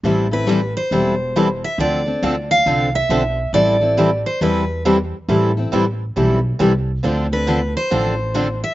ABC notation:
X:1
M:4/4
L:1/8
Q:"Swing" 1/4=137
K:Am
V:1 name="Steel-string acoustic guitar"
z B2 c4 e | d3 f2 e3 | d3 c B2 z2 | z8 |
z B2 c4 e |]
V:2 name="Steel-string acoustic guitar"
[E,G,CEA] [CEA] [E,G,CEA] z [E,G,CEA] z [E,G,CEA] z | [D,F,CDA] [CDA] [D,F,CDA] z [D,F,CDA] z [D,F,CDA] z | [E,G,CEA] [CEA] [E,G,CEA] z [E,G,CEA] z [E,G,CEA] z | [E,G,CEA] [CEA] [E,G,CEA] z [E,G,CEA] z [E,G,CEA] z |
[D,F,CDA] [CDA] [D,F,CDA] z [D,F,CDA] z [D,F,CDA] z |]
V:3 name="Steel-string acoustic guitar"
[E,G,CEA] z [E,G,CEA] z [E,G,CEA] z [E,G,CEA] z | [D,F,CDA] z [D,F,CDA] z [D,F,CDA] z [D,F,CDA] z | [E,G,CEA] z [E,G,CEA] z [E,G,CEA] z [E,G,CEA] z | [E,G,CEA] z [E,G,CEA] z [E,G,CEA] z [E,G,CEA] z |
[D,F,CDA] z [D,F,CDA] z [D,F,CDA] z [D,F,CDA] z |]
V:4 name="Upright bass" clef=bass
A,,,4 E,,,4 | D,,2 D,,2 C,,2 B,,,2 | A,,,4 E,,4 | A,,,2 A,,,2 B,,,2 C,,2 |
D,,4 A,,,4 |]